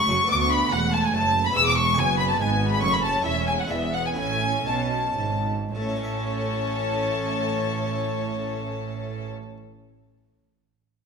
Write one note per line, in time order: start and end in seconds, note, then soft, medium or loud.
0.00 0.10 A3 medium
0.00 0.24 A3 medium
0.00 0.25 F#4 medium
0.00 0.25 A4 medium
0.00 0.29 C#6 medium
0.00 0.30 C#6 loud
0.08 0.17 F#1 medium
0.08 0.28 F#2 medium
0.08 0.18 F#2 medium
0.08 0.21 F#3 medium
0.21 0.31 A3 medium
0.21 1.49 B3 medium
0.26 0.67 D2 medium
0.26 1.50 F#4 medium
0.26 1.50 A4 medium
0.30 0.69 D2 medium
0.30 0.70 B3 medium
0.30 0.35 D6 loud
0.30 0.41 D6 loud
0.30 0.36 D6 loud
0.41 0.51 C#6 medium
0.41 0.54 C#6 medium
0.41 0.52 C#6 loud
0.51 0.72 B5 medium
0.51 0.73 B5 loud
0.51 0.74 B5 medium
0.71 1.13 E1 medium
0.71 1.09 E2 medium
0.71 1.13 E2 medium
0.71 1.56 A3 medium
0.71 0.80 F#5 loud
0.71 0.95 F#5 loud
0.71 0.93 F#5 loud
0.93 1.03 A5 loud
0.93 1.06 A5 medium
0.93 1.04 A5 loud
1.03 1.13 G#5 medium
1.03 1.14 G#5 loud
1.03 1.16 G#5 medium
1.13 1.55 F#1 medium
1.13 1.52 F#2 medium
1.13 1.55 F#2 medium
1.13 1.45 A5 medium
1.13 1.45 A5 loud
1.13 1.48 A5 loud
1.45 1.49 B5 medium
1.45 1.56 B5 loud
1.45 1.58 B5 medium
1.50 1.94 B3 medium
1.50 2.76 E4 medium
1.50 2.77 G#4 medium
1.55 1.97 E1 loud
1.55 1.93 E2 medium
1.55 1.97 E2 medium
1.55 1.97 G#3 medium
1.55 1.66 E6 loud
1.55 1.67 E6 loud
1.65 1.76 D6 medium
1.65 1.77 D6 loud
1.76 1.84 C#6 loud
1.76 1.98 C#6 loud
1.76 2.00 C#6 loud
1.97 2.39 F#1 medium
1.97 2.36 F#2 medium
1.97 2.40 F#2 medium
1.97 2.38 B3 medium
1.97 2.19 G#5 loud
2.18 2.22 B5 loud
2.18 2.29 B5 loud
2.18 2.24 B5 medium
2.29 2.39 A5 medium
2.29 2.40 A5 medium
2.29 2.34 A5 loud
2.38 2.81 G#1 medium
2.38 2.78 G#2 medium
2.38 2.81 G#2 medium
2.38 2.81 B3 medium
2.38 2.70 G#5 medium
2.38 2.71 G#5 loud
2.38 2.49 G#5 loud
2.70 2.81 B5 medium
2.70 2.82 B5 medium
2.70 2.83 B5 medium
2.78 3.25 F#1 medium
2.78 3.25 F#2 medium
2.78 3.20 A3 medium
2.78 3.22 C#4 medium
2.78 3.23 C#5 medium
2.78 2.92 C#6 loud
2.78 2.86 C#6 loud
2.83 3.22 F#2 medium
2.83 3.24 C#4 medium
2.83 2.95 C#6 loud
2.92 3.03 B5 medium
2.92 2.98 B5 loud
2.92 3.04 B5 medium
3.03 3.24 A5 loud
3.03 3.25 A5 medium
3.03 3.26 A5 medium
3.21 3.66 A3 medium
3.21 3.66 E4 medium
3.21 3.68 C#5 medium
3.21 3.47 E5 loud
3.25 3.69 E1 medium
3.25 3.66 E2 medium
3.25 3.69 E2 medium
3.25 3.69 C#4 medium
3.25 3.47 E5 medium
3.47 3.58 G#5 loud
3.47 3.59 G#5 medium
3.47 3.52 G#5 medium
3.59 3.70 F#5 medium
3.59 3.72 F#5 medium
3.67 4.14 G#3 medium
3.67 4.16 B3 medium
3.67 4.13 E4 medium
3.67 4.15 D5 medium
3.67 3.77 E5 loud
3.71 4.16 E1 medium
3.71 4.16 E2 medium
3.71 4.13 E2 medium
3.71 3.95 E5 medium
3.71 3.94 E5 medium
3.92 4.04 F#5 loud
3.92 3.98 F#5 medium
3.92 4.05 F#5 medium
4.06 4.15 G#5 medium
4.06 4.11 G#5 medium
4.12 5.68 A3 medium
4.12 5.69 E4 medium
4.12 5.70 C#5 medium
4.16 4.65 A1 medium
4.16 4.62 A2 medium
4.16 4.66 A2 medium
4.16 5.47 C#4 medium
4.16 4.65 G#5 loud
4.16 4.68 G#5 loud
4.16 4.66 G#5 loud
4.66 5.18 B1 medium
4.66 5.14 B2 medium
4.66 5.17 B2 medium
4.66 5.46 A5 medium
4.66 5.45 A5 medium
5.18 5.73 G#1 medium
5.18 5.71 G#2 medium
5.18 5.74 G#2 medium
5.74 9.28 A1 medium
5.74 9.28 A2 medium
5.74 9.29 A2 medium
5.74 9.29 C#4 medium
5.74 9.29 A4 medium
5.74 9.29 C#5 medium
5.74 9.29 A5 loud
5.82 9.36 A3 medium
5.89 9.43 E4 medium
5.96 9.50 C#5 medium
6.03 9.57 E5 medium